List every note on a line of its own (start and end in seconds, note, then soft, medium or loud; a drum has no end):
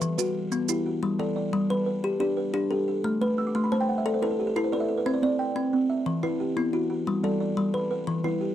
0.00 0.35 E3 medium
0.00 0.18 B4 medium
0.00 0.35 E5 medium
0.00 maracas soft
0.18 0.52 E3 medium
0.18 0.69 F#4 medium
0.18 0.69 B4 medium
0.18 maracas medium
0.52 0.86 B3 medium
0.52 maracas medium
0.69 1.03 E4 medium
0.69 1.20 E4 medium
0.69 1.19 G4 medium
0.69 maracas medium
0.86 1.36 F#4 medium
1.03 1.36 G3 medium
1.19 1.53 G3 medium
1.19 1.70 A4 medium
1.19 1.35 D5 medium
1.36 1.87 D5 medium
1.53 1.87 G3 medium
1.70 2.03 G3 medium
1.70 2.21 B4 medium
1.86 2.36 B4 medium
2.04 2.19 G4 medium
2.20 2.54 D4 medium
2.20 2.52 G4 medium
2.20 2.71 D5 medium
2.37 2.87 B4 medium
2.54 2.87 D4 medium
2.54 3.04 G4 medium
2.71 3.04 G4 medium
2.71 3.21 A4 medium
2.88 3.38 A4 medium
3.04 3.38 A3 medium
3.21 3.55 A3 medium
3.21 3.72 B4 medium
3.38 3.54 E6 medium
3.47 3.62 D6 medium
3.55 3.88 A3 medium
3.55 3.71 C6 medium
3.64 3.79 B5 medium
3.72 4.05 A3 medium
3.72 4.22 C5 medium
3.72 3.87 A5 medium
3.81 3.96 G5 medium
3.89 4.04 F#5 medium
3.98 4.13 E5 medium
4.06 4.21 A4 medium
4.06 4.21 D5 medium
4.14 4.29 C5 medium
4.22 4.56 E4 medium
4.22 4.55 A4 medium
4.22 4.38 B4 medium
4.31 4.46 A4 medium
4.39 4.55 G4 medium
4.47 4.63 A4 medium
4.56 4.89 E4 medium
4.56 5.06 A4 medium
4.56 4.72 B4 medium
4.64 4.80 C5 medium
4.72 4.87 A4 medium
4.72 5.23 B4 medium
4.72 4.88 D5 medium
4.80 4.96 E5 medium
4.89 5.04 A4 medium
4.98 5.13 B4 medium
5.06 5.39 C4 medium
5.06 5.21 C5 medium
5.14 5.29 D5 medium
5.23 5.56 C4 medium
5.23 5.73 D5 medium
5.39 5.89 G5 medium
5.56 5.90 C4 medium
5.73 6.07 C4 medium
5.90 6.40 E5 medium
6.06 6.40 E3 medium
6.23 6.57 E3 medium
6.23 6.56 E4 medium
6.23 6.74 B4 medium
6.40 6.90 G4 medium
6.57 6.90 B3 medium
6.57 7.07 E4 medium
6.73 7.07 E4 medium
6.73 7.24 F#4 medium
6.90 7.40 F#4 medium
7.07 7.41 G3 medium
7.23 7.57 G3 medium
7.23 7.74 A4 medium
7.23 7.39 D5 medium
7.40 7.91 D5 medium
7.57 7.91 G3 medium
7.74 8.08 G3 medium
7.74 8.24 B4 medium
7.91 8.23 B4 medium
8.07 8.41 E3 medium
8.24 8.55 E3 medium
8.24 8.55 E4 medium
8.24 8.55 B4 medium
8.41 8.55 G4 medium